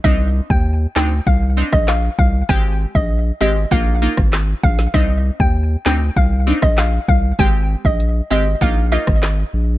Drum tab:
HH |----------------|----------------|----------------|x---x---x---x---|
CP |------x-----x---|------------x---|------x-----x---|------------x---|
SD |------o----ro---|-----------ro--o|------o----ro---|-----------ro---|
BD |o--o----o--o--o-|o--o----o--o--o-|o--o----o--o--o-|o--o----o--o----|